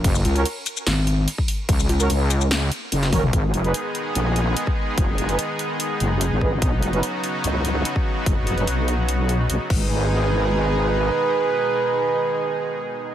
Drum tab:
CC |x---x---x---x---|x---x---x---x---|----------------|----------------|
HH |x-xxx-x-x-x-x-o-|x-xxx-x-x-x-xxo-|x-xxx-x-x-x-x---|x-xxx-x-x-x-x---|
SH |-x----xx--------|-x-x--xx--------|----------------|----------------|
SD |--------o-------|--------o----o--|----------------|----------------|
T1 |----------------|--------------o-|----------------|----------------|
T2 |----------------|---------------o|----------------|----------------|
BD |o------------o--|o-------------o-|o------------o--|o-------------o-|

CC |----------------|--------------x-|----------------|----------------|
HH |x-xxx-x-x-x-x---|x-xxx-x-x-x-x---|----------------|----------------|
SH |----------------|----------------|----------------|----------------|
SD |----------------|----------------|----------------|----------------|
T1 |----------------|----------------|----------------|----------------|
T2 |----------------|----------------|----------------|----------------|
BD |o------------o--|o-------------o-|----------------|----------------|